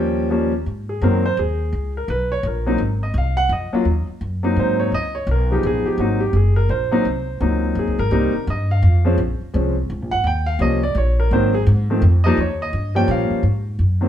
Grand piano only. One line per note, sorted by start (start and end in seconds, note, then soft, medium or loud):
0.00 0.28 F3 medium
0.00 0.28 G3 medium
0.00 0.28 A#3 medium
0.00 0.29 C#4 medium
0.00 0.27 A#4 medium
0.00 0.28 C#5 medium
0.00 0.27 G5 loud
0.30 0.51 F3 medium
0.30 0.51 G3 medium
0.30 0.51 A#3 medium
0.30 0.51 C#4 medium
0.89 1.02 G#4 medium
1.02 1.22 D#3 medium
1.02 1.22 F#3 medium
1.02 1.22 A#3 medium
1.02 1.22 C4 medium
1.02 1.24 A#4 medium
1.26 1.37 C5 medium
1.39 1.92 G#4 medium
1.97 2.09 A#4 medium
2.10 2.31 B4 medium
2.32 2.44 C#5 medium
2.47 2.99 A#4 medium
2.66 2.78 F#3 medium
2.66 2.78 A#3 medium
2.66 2.78 C4 medium
2.66 2.78 D#4 medium
3.03 3.15 D#5 medium
3.18 3.38 F5 medium
3.37 3.50 F#5 loud
3.53 4.05 D#5 medium
3.73 3.85 F#3 medium
3.73 3.84 A#3 medium
3.73 3.85 C#4 medium
3.73 3.85 F4 medium
4.43 4.89 F#3 medium
4.43 4.89 A#3 medium
4.43 4.90 C4 medium
4.43 4.90 D#4 medium
4.60 4.80 C5 medium
4.80 4.92 C#5 medium
4.94 5.15 D#5 medium
5.15 5.27 C#5 medium
5.31 5.51 A#4 medium
5.51 5.96 F3 medium
5.51 5.96 G#3 medium
5.51 5.96 B3 medium
5.51 5.97 D#4 medium
5.51 5.64 G4 medium
5.66 5.86 G#4 medium
5.86 5.98 G4 medium
5.99 6.19 F#3 medium
5.99 6.19 A#3 medium
5.99 6.19 C4 medium
5.99 6.20 D#4 medium
5.99 6.21 F#4 medium
6.20 6.33 G4 medium
6.36 6.57 G#4 medium
6.56 6.69 A#4 medium
6.70 7.37 C5 medium
6.92 7.03 F#3 medium
6.92 7.04 A#3 medium
6.92 7.04 C4 medium
6.92 7.04 D#4 medium
7.40 7.94 F#3 medium
7.40 7.94 A#3 medium
7.40 7.94 C4 medium
7.40 7.94 D#4 medium
7.79 7.99 G#4 medium
7.99 8.44 A#4 medium
8.11 8.31 G3 medium
8.11 8.32 A#3 medium
8.11 8.32 C4 medium
8.11 8.32 D#4 medium
8.50 8.70 D#5 medium
8.71 9.15 F5 medium
9.05 9.16 F3 medium
9.05 9.17 G#3 medium
9.05 9.17 C4 medium
9.05 9.17 C#4 medium
9.54 9.74 F3 medium
9.54 9.74 G#3 medium
9.54 9.74 C4 medium
9.54 9.74 C#4 medium
10.11 10.24 F#5 loud
10.27 10.47 G5 medium
10.46 10.59 F5 loud
10.60 10.80 F3 medium
10.60 10.80 G3 medium
10.60 10.80 A#3 medium
10.60 10.80 C#4 medium
10.60 10.82 D#5 medium
10.83 10.95 D5 medium
10.98 11.18 C#5 medium
11.20 11.31 A#4 medium
11.32 11.52 D#3 medium
11.32 11.52 F#3 medium
11.32 11.52 A#3 medium
11.32 11.52 C4 medium
11.32 11.53 C5 medium
11.54 11.62 G#4 medium
11.90 12.01 D#3 medium
11.90 12.01 F3 medium
11.90 12.01 A3 medium
11.90 12.02 C4 medium
12.24 12.37 F3 medium
12.24 12.37 G3 medium
12.24 12.37 A#3 medium
12.24 12.37 D#4 medium
12.24 12.37 D#5 loud
12.40 12.60 C#5 medium
12.62 12.94 D#5 medium
12.95 13.41 F3 medium
12.95 13.41 G3 medium
12.95 13.41 A#3 medium
12.95 13.41 C#4 medium
12.95 13.08 G5 loud
13.11 13.42 F5 medium
14.01 14.09 D#3 medium
14.01 14.09 F#3 medium
14.01 14.09 A#3 medium
14.01 14.09 C4 medium